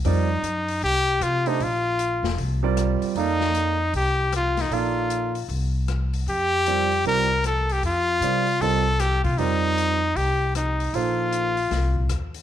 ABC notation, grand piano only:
X:1
M:4/4
L:1/8
Q:"Swing" 1/4=154
K:Fmix
V:1 name="Grand piano"
[G,CFBd] z6 [A,DGce] | z4 z [G,CFBd]3 | [B,EAdf]3 z4 z | [B,EAdf]3 z4 z |
z2 [G,CFBd] z [G,CFBd] z3 | z2 [G,CFBd] z [G,CFBe] z3 | [G,CFBd]3 z4 z | [F,B,EAc]3 z4 z |]